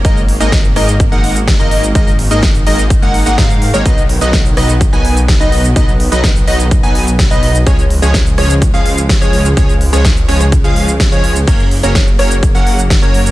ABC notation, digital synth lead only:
X:1
M:4/4
L:1/16
Q:1/4=126
K:C#mix
V:1 name="Digital synth lead"
d z2 d z2 d z2 f2 z2 d2 z | d z2 d z2 d z2 f2 f e3 c | d z2 d z2 d z2 g2 z2 d2 z | d z2 d z2 d z2 g2 z2 d2 z |
c z2 c z2 c z2 e2 z2 c2 z | c z2 c z2 c z2 e2 z2 c2 z | c z2 c z2 c z2 f2 z2 c2 z |]